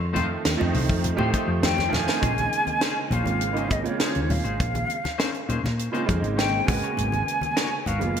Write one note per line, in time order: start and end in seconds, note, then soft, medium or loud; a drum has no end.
0.00 0.35 F2 loud
0.13 0.55 D#3 medium
0.13 0.55 F3 medium
0.13 0.29 A3 medium
0.13 0.55 A3 medium
0.13 0.56 C4 medium
0.13 0.28 D#4 medium
0.13 0.28 F4 medium
0.13 0.56 F4 medium
0.13 0.28 C5 medium
0.13 closed hi-hat medium
0.13 high conga medium
0.13 low conga medium
0.29 muted clean electric guitar stroke soft
0.45 0.58 D#2 medium
0.45 snare loud
0.45 closed hi-hat medium
0.57 0.72 F2 medium
0.57 1.13 D#3 medium
0.57 1.13 F3 medium
0.57 1.13 A3 medium
0.57 1.14 C4 medium
0.57 1.14 D#4 loud
0.57 muted clean electric guitar stroke soft
0.57 high conga medium
0.74 0.87 C2 medium
0.74 muted clean electric guitar stroke soft
0.74 open hi-hat medium
0.74 low conga medium
0.89 1.14 F2 medium
0.89 kick medium
1.03 muted clean electric guitar stroke soft
1.03 closed hi-hat medium
1.03 low conga medium
1.16 1.31 A2 medium
1.16 1.86 D#3 medium
1.16 1.86 F3 medium
1.16 1.86 A3 medium
1.16 1.32 A3 medium
1.16 1.86 C4 medium
1.16 1.33 D#4 medium
1.16 1.33 F4 medium
1.16 1.86 G4 loud
1.16 1.33 C5 medium
1.16 high conga medium
1.33 1.52 A3 medium
1.33 1.52 D#4 medium
1.33 1.52 F4 medium
1.33 1.52 C5 medium
1.33 muted fretless electric bass stroke soft
1.33 kick medium
1.33 closed hi-hat medium
1.48 2.09 F2 medium
1.60 1.78 A3 medium
1.60 1.78 D#4 medium
1.60 1.77 F4 medium
1.60 1.77 C5 medium
1.60 1.76 F5 medium
1.60 1.95 G5 medium
1.60 snare loud
1.60 closed hi-hat medium
1.60 high conga medium
1.75 2.18 C#5 medium
1.75 muted clean electric guitar stroke soft
1.75 high conga medium
1.79 snare soft
1.88 2.20 D#3 medium
1.88 2.21 F3 medium
1.88 2.21 A3 medium
1.88 2.20 C4 medium
1.88 2.21 F4 medium
1.93 3.14 G#5 loud
1.93 muted clean electric guitar stroke soft
1.93 snare medium
1.93 low conga medium
2.07 2.20 D#4 soft
2.07 2.21 F4 soft
2.07 2.21 C5 medium
2.07 snare medium
2.20 2.47 A#1 medium
2.20 3.17 C#3 medium
2.20 3.17 G#3 medium
2.20 3.17 A#3 medium
2.20 3.17 C4 medium
2.20 2.37 C#4 medium
2.20 2.36 D#4 medium
2.20 3.17 D#4 medium
2.20 2.36 G#4 medium
2.20 2.36 C5 medium
2.20 kick medium
2.20 closed hi-hat medium
2.20 low conga medium
2.37 muted clean electric guitar stroke soft
2.37 closed hi-hat soft
2.37 high conga medium
2.53 closed hi-hat medium
2.66 muted clean electric guitar stroke soft
2.66 closed hi-hat soft
2.66 high conga medium
2.81 2.97 C#4 medium
2.81 2.96 D#4 medium
2.81 2.96 G#4 medium
2.81 2.95 C5 medium
2.81 snare medium
2.81 closed hi-hat medium
2.97 muted clean electric guitar stroke soft
3.10 3.25 A#1 medium
3.10 3.27 C#4 medium
3.10 3.26 D#4 medium
3.10 3.26 G#4 medium
3.10 3.26 C5 medium
3.10 3.74 F5 medium
3.10 closed hi-hat medium
3.10 low conga medium
3.23 3.87 G#1 medium
3.23 3.51 C#3 medium
3.23 3.51 G#3 medium
3.23 3.52 A#3 medium
3.23 3.53 C4 medium
3.23 3.53 F4 medium
3.23 muted clean electric guitar stroke soft
3.23 closed hi-hat soft
3.23 high conga medium
3.41 muted clean electric guitar stroke soft
3.41 closed hi-hat medium
3.53 3.67 C#3 medium
3.53 3.68 G#3 medium
3.53 3.68 A#3 medium
3.53 3.68 C4 medium
3.53 3.68 D#4 medium
3.53 3.70 C5 medium
3.53 closed hi-hat soft
3.57 3.69 C#4 medium
3.57 3.70 D#4 medium
3.57 3.70 G#4 medium
3.69 3.82 C#3 medium
3.69 3.82 G#3 medium
3.69 3.83 A#3 medium
3.69 3.83 C4 medium
3.69 3.84 D#4 medium
3.69 3.86 D#5 medium
3.69 kick medium
3.69 closed hi-hat medium
3.69 high conga medium
3.83 4.93 C#3 medium
3.83 4.94 G#3 medium
3.83 4.94 A#3 medium
3.83 4.94 C4 medium
3.83 4.94 F4 medium
3.83 4.00 C#5 medium
3.83 closed hi-hat soft
4.00 4.15 C#4 soft
4.00 4.14 D#4 medium
4.00 4.13 G#4 soft
4.00 4.13 C5 medium
4.00 4.32 C#5 medium
4.00 muted fretless electric bass stroke soft
4.00 snare medium
4.00 closed hi-hat medium
4.15 4.40 D#2 medium
4.15 muted clean electric guitar stroke soft
4.15 closed hi-hat soft
4.30 5.49 F5 medium
4.30 muted clean electric guitar stroke soft
4.30 open hi-hat medium
4.30 low conga medium
4.44 4.57 G#1 medium
4.44 4.63 D#4 soft
4.44 4.63 G#4 soft
4.44 4.62 C5 medium
4.44 closed hi-hat soft
4.60 4.85 A#1 medium
4.60 kick loud
4.60 closed hi-hat medium
4.60 low conga medium
4.75 muted clean electric guitar stroke soft
4.75 closed hi-hat soft
4.75 high conga medium
4.90 closed hi-hat medium
5.04 muted clean electric guitar stroke soft
5.04 snare soft
5.04 closed hi-hat soft
5.04 high conga medium
5.18 5.34 C#4 medium
5.18 5.32 D#4 medium
5.18 5.32 G#4 medium
5.18 5.32 C5 medium
5.18 snare loud
5.18 closed hi-hat medium
5.33 muted clean electric guitar stroke soft
5.33 closed hi-hat soft
5.48 5.61 A#2 medium
5.48 5.64 C#4 medium
5.48 5.64 D#4 medium
5.48 5.64 G#4 medium
5.48 5.63 C5 medium
5.48 closed hi-hat medium
5.48 low conga medium
5.64 5.88 A#2 medium
5.64 muted clean electric guitar stroke soft
5.64 snare soft
5.64 high conga medium
5.78 muted clean electric guitar stroke soft
5.78 closed hi-hat medium
5.92 6.04 C#3 medium
5.92 6.05 G#3 medium
5.92 6.05 A#3 medium
5.92 6.05 C4 medium
5.92 6.07 C#4 medium
5.92 6.06 D#4 medium
5.92 6.07 F4 medium
5.92 6.07 G#4 medium
5.92 6.07 C5 medium
5.92 closed hi-hat soft
6.05 6.21 F2 medium
6.05 6.61 C#3 medium
6.05 6.62 G#3 medium
6.05 6.62 A#3 medium
6.05 6.62 C4 medium
6.05 6.62 D#4 medium
6.05 kick medium
6.05 closed hi-hat soft
6.10 high conga medium
6.22 6.59 G#1 medium
6.22 closed hi-hat soft
6.37 6.53 C#4 medium
6.37 6.51 D#4 medium
6.37 6.51 G#4 medium
6.37 6.51 C5 medium
6.37 6.68 G5 medium
6.37 snare medium
6.37 closed hi-hat medium
6.52 muted clean electric guitar stroke soft
6.65 6.80 G#1 medium
6.65 7.76 C#3 medium
6.65 7.76 G#3 medium
6.65 7.76 A#3 medium
6.65 7.76 B3 medium
6.65 7.76 F#4 medium
6.65 7.88 G#5 loud
6.65 kick medium
6.65 open hi-hat medium
6.65 low conga medium
6.84 7.01 F#4 soft
6.84 7.01 A#4 soft
6.84 7.01 C#5 soft
6.84 closed hi-hat soft
6.97 7.22 G#1 medium
6.97 closed hi-hat medium
6.97 low conga soft
7.12 muted clean electric guitar stroke soft
7.12 closed hi-hat soft
7.12 high conga medium
7.28 closed hi-hat medium
7.41 muted clean electric guitar stroke soft
7.41 closed hi-hat soft
7.41 high conga medium
7.56 7.71 B3 medium
7.56 7.71 F#4 medium
7.56 7.72 A#4 medium
7.56 7.71 C#5 medium
7.56 snare medium
7.56 closed hi-hat medium
7.72 muted clean electric guitar stroke soft
7.86 8.02 G#1 medium
7.86 8.02 B3 soft
7.86 8.02 F#4 medium
7.86 8.01 A#4 medium
7.86 8.01 C#5 medium
7.86 8.20 F5 medium
7.86 closed hi-hat medium
7.86 low conga medium
7.99 8.20 F#1 medium
7.99 8.20 C#3 medium
7.99 8.20 G#3 medium
7.99 8.20 A#3 medium
7.99 8.20 B3 medium
7.99 8.20 F4 medium
7.99 muted clean electric guitar stroke soft
7.99 closed hi-hat soft
7.99 high conga medium
8.16 muted clean electric guitar stroke soft
8.16 closed hi-hat medium